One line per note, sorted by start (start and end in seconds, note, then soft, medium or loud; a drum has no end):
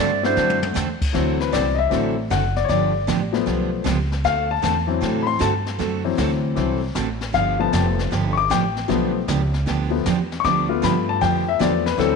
0.00 0.36 G2 loud
0.00 0.18 A3 medium
0.00 0.10 C4 medium
0.00 0.18 C4 medium
0.00 0.18 D4 medium
0.00 0.19 E4 medium
0.00 0.10 F#4 medium
0.00 0.19 F#4 medium
0.00 0.10 A4 medium
0.00 0.22 D5 loud
0.23 0.73 A3 medium
0.23 0.73 C4 medium
0.23 0.73 D4 medium
0.23 0.73 E4 medium
0.23 0.73 F#4 medium
0.23 0.61 C5 loud
0.23 snare soft
0.36 0.74 F#2 medium
0.36 0.59 D3 medium
0.36 0.60 A3 medium
0.36 0.60 C4 medium
0.36 0.60 F#4 medium
0.36 0.60 A4 medium
0.36 snare soft
0.50 high tom medium
0.63 high tom medium
0.74 1.00 E2 loud
0.74 0.87 D3 medium
0.74 0.87 A3 medium
0.74 0.87 C4 medium
0.74 0.87 F#4 medium
0.74 0.88 A4 medium
0.74 snare medium
0.74 hi-hat pedal medium
1.01 muted upright bass stroke soft
1.01 kick medium
1.01 crash medium
1.13 1.52 D2 medium
1.13 1.37 D3 medium
1.13 1.75 E3 medium
1.13 1.75 F#3 medium
1.13 1.37 A3 medium
1.13 1.76 C4 medium
1.13 1.37 C4 medium
1.13 1.37 F#4 medium
1.13 1.38 A4 medium
1.13 brush sweep medium
1.13 snare soft
1.40 1.53 B4 medium
1.40 snare soft
1.52 1.91 C2 loud
1.52 1.65 D3 medium
1.52 1.65 A3 medium
1.52 1.65 C4 medium
1.52 1.65 F#4 medium
1.52 1.65 A4 medium
1.52 1.78 D5 medium
1.52 kick soft
1.52 snare medium
1.52 hi-hat pedal medium
1.74 1.77 D#5 medium
1.78 2.29 E5 medium
1.90 2.29 A1 medium
1.90 2.14 D3 medium
1.90 2.14 E3 medium
1.90 2.14 F#3 soft
1.90 2.14 A3 medium
1.90 2.14 C4 medium
1.90 2.14 F#4 medium
1.90 2.15 A4 medium
1.90 brush sweep soft
1.90 kick soft
1.90 snare soft
2.30 2.68 F#1 medium
2.30 2.42 D3 medium
2.30 2.43 A3 medium
2.30 2.43 C4 medium
2.30 2.43 F#4 medium
2.30 2.43 A4 medium
2.30 2.56 F#5 medium
2.30 kick soft
2.30 snare medium
2.30 hi-hat pedal medium
2.56 2.68 D5 medium
2.56 snare soft
2.65 2.68 C#5 medium
2.69 3.07 G1 medium
2.69 2.92 D3 medium
2.69 2.92 F3 medium
2.69 2.92 B3 medium
2.69 2.92 D4 medium
2.69 2.92 G4 medium
2.69 3.07 D5 medium
2.69 brush sweep soft
2.69 kick soft
2.69 snare soft
3.07 3.46 A1 loud
3.07 3.20 D3 medium
3.07 3.20 F3 medium
3.07 3.20 B3 medium
3.07 3.20 D4 medium
3.07 3.20 G4 medium
3.07 kick soft
3.07 snare medium
3.07 hi-hat pedal medium
3.33 3.82 F3 medium
3.33 3.83 A3 soft
3.33 3.83 B3 medium
3.33 snare soft
3.46 3.84 B1 medium
3.46 3.69 D3 medium
3.46 3.69 F3 medium
3.46 3.69 B3 medium
3.46 3.69 D4 medium
3.46 3.70 G4 medium
3.46 brush sweep medium
3.46 kick soft
3.46 snare soft
3.84 4.23 C#2 medium
3.84 3.97 D3 medium
3.84 3.97 F3 medium
3.84 3.97 B3 medium
3.84 3.97 D4 medium
3.84 3.98 G4 medium
3.84 kick soft
3.84 snare medium
3.84 hi-hat pedal medium
4.12 snare soft
4.24 4.62 D2 medium
4.24 4.47 D3 medium
4.24 4.47 A3 medium
4.24 4.47 C4 medium
4.24 4.47 F#4 medium
4.24 4.47 A4 medium
4.24 4.50 F5 loud
4.24 brush sweep medium
4.24 kick soft
4.24 snare medium
4.51 4.62 A5 medium
4.62 5.01 E2 loud
4.62 4.75 D3 medium
4.62 4.75 A3 medium
4.62 4.75 C4 medium
4.62 4.75 F#4 medium
4.62 4.75 A4 medium
4.62 5.26 A5 medium
4.62 kick soft
4.62 snare medium
4.62 hi-hat pedal medium
4.87 5.37 E3 medium
4.87 5.37 F#3 medium
4.87 5.38 C4 medium
5.01 5.40 A2 medium
5.01 5.24 D3 medium
5.01 5.24 A3 medium
5.01 5.24 C4 medium
5.01 5.24 F#4 medium
5.01 5.25 A4 medium
5.01 brush sweep soft
5.01 kick soft
5.01 snare soft
5.23 5.25 B5 medium
5.27 5.40 C6 medium
5.39 5.78 G2 medium
5.39 5.52 D3 medium
5.39 5.52 A3 medium
5.39 5.52 C4 medium
5.39 5.52 F#4 medium
5.39 5.52 A4 medium
5.39 6.53 A5 medium
5.39 kick soft
5.39 snare medium
5.39 hi-hat pedal medium
5.66 snare soft
5.79 6.17 F#2 medium
5.79 6.02 D3 medium
5.79 6.02 A3 medium
5.79 6.02 C4 medium
5.79 6.02 F#4 medium
5.79 6.02 A4 medium
5.79 brush sweep medium
5.79 kick soft
5.79 snare soft
6.04 6.54 E3 medium
6.04 6.54 F#3 medium
6.04 6.55 C4 medium
6.17 6.56 D2 loud
6.17 6.30 D3 medium
6.17 6.30 A3 medium
6.17 6.30 C4 medium
6.17 6.30 F#4 medium
6.17 6.30 A4 medium
6.17 kick soft
6.17 snare medium
6.17 hi-hat pedal medium
6.55 6.94 C2 medium
6.55 6.79 D3 medium
6.55 6.79 E3 medium
6.55 6.79 F#3 soft
6.55 6.79 A3 medium
6.55 6.80 C4 medium
6.55 6.79 C4 medium
6.55 6.80 F#4 medium
6.55 6.80 A4 medium
6.55 brush sweep soft
6.55 kick soft
6.55 snare soft
6.95 7.33 A1 medium
6.95 7.07 D3 medium
6.95 7.07 A3 medium
6.95 7.08 C4 medium
6.95 7.08 F#4 medium
6.95 7.08 A4 medium
6.95 kick soft
6.95 snare medium
6.95 hi-hat pedal medium
7.21 snare soft
7.33 7.72 G1 medium
7.33 7.56 D3 medium
7.33 7.56 F3 medium
7.33 7.57 B3 medium
7.33 7.57 D4 medium
7.33 7.57 G4 medium
7.33 7.59 F5 loud
7.33 brush sweep soft
7.33 kick soft
7.33 snare medium
7.59 8.09 F3 medium
7.59 8.09 A3 soft
7.59 8.09 B3 medium
7.59 7.72 A5 medium
7.73 8.11 F1 loud
7.73 7.85 D3 medium
7.73 7.85 F3 medium
7.73 7.85 B3 medium
7.73 7.85 D4 medium
7.73 7.85 G4 medium
7.73 8.36 A5 medium
7.73 kick soft
7.73 snare medium
7.73 hi-hat pedal medium
7.99 snare soft
8.11 8.49 G1 medium
8.11 8.34 D3 medium
8.11 8.34 F3 medium
8.11 8.34 B3 medium
8.11 8.34 D4 medium
8.11 8.34 G4 medium
8.11 brush sweep soft
8.11 kick soft
8.11 snare soft
8.33 8.35 C#6 medium
8.38 8.50 D6 loud
8.50 8.88 A1 loud
8.50 8.62 D3 medium
8.50 8.62 F3 medium
8.50 8.62 B3 medium
8.50 8.63 D4 medium
8.50 8.63 G4 medium
8.50 9.63 G5 medium
8.50 kick soft
8.50 snare medium
8.50 hi-hat pedal medium
8.77 snare soft
8.88 9.27 B1 medium
8.88 9.11 D3 medium
8.88 9.18 F3 medium
8.88 9.11 F3 medium
8.88 9.18 A3 medium
8.88 9.11 B3 medium
8.88 9.19 B3 medium
8.88 9.12 D4 medium
8.88 9.12 G4 medium
8.88 brush sweep medium
8.88 kick soft
8.88 snare medium
9.28 9.66 C#2 loud
9.28 9.40 D3 medium
9.28 9.40 F3 medium
9.28 9.40 B3 medium
9.28 9.40 D4 medium
9.28 9.41 G4 medium
9.28 kick soft
9.28 snare medium
9.28 hi-hat pedal medium
9.54 snare soft
9.66 10.04 D2 medium
9.66 9.89 D3 medium
9.66 9.89 F3 medium
9.66 9.89 B3 medium
9.66 9.89 D4 medium
9.66 9.90 G4 medium
9.66 brush sweep soft
9.66 kick soft
9.66 snare soft
9.90 10.03 F3 medium
9.90 10.03 A3 soft
9.90 10.03 B3 medium
10.05 10.43 E2 loud
10.05 10.17 D3 medium
10.05 10.17 F3 medium
10.05 10.18 B3 medium
10.05 10.18 D4 medium
10.05 10.18 G4 medium
10.05 kick soft
10.05 snare medium
10.05 hi-hat pedal medium
10.32 snare soft
10.40 10.43 C#6 medium
10.44 10.82 D2 medium
10.44 10.66 D3 medium
10.44 10.67 F3 medium
10.44 10.67 B3 medium
10.44 10.67 D4 medium
10.44 10.67 G4 medium
10.44 10.82 D6 loud
10.44 brush sweep soft
10.44 kick soft
10.44 snare soft
10.69 11.59 A3 medium
10.69 11.59 B3 medium
10.69 11.94 F4 medium
10.82 11.20 G2 loud
10.82 10.94 D3 medium
10.82 10.94 F3 medium
10.82 10.95 B3 medium
10.82 10.95 D4 medium
10.82 10.95 G4 medium
10.82 11.08 B5 medium
10.82 kick soft
10.82 snare medium
10.82 hi-hat pedal medium
11.09 11.21 A5 medium
11.21 11.59 F2 medium
11.21 11.44 D3 medium
11.21 11.44 F3 medium
11.21 11.44 B3 medium
11.21 11.44 D4 medium
11.21 11.44 G4 medium
11.21 11.46 G5 loud
11.21 brush sweep soft
11.21 kick soft
11.21 snare soft
11.49 11.60 E5 medium
11.59 11.98 E2 medium
11.59 11.72 D3 medium
11.59 11.71 F3 medium
11.59 11.83 F3 soft
11.59 11.83 A3 soft
11.59 11.72 B3 medium
11.59 11.83 B3 medium
11.59 11.72 D4 medium
11.59 11.72 G4 medium
11.59 11.86 D5 medium
11.59 kick soft
11.59 snare medium
11.59 hi-hat pedal medium
11.86 11.98 B4 medium
11.86 snare medium
11.97 12.16 D2 medium
11.97 12.16 D3 medium
11.97 12.16 E3 medium
11.97 12.16 F#3 medium
11.97 12.16 A3 medium
11.97 12.16 C4 medium
11.97 12.16 F#4 medium
11.97 12.16 A4 loud
11.97 12.16 A4 medium
11.97 brush sweep medium
11.97 kick soft
11.97 snare soft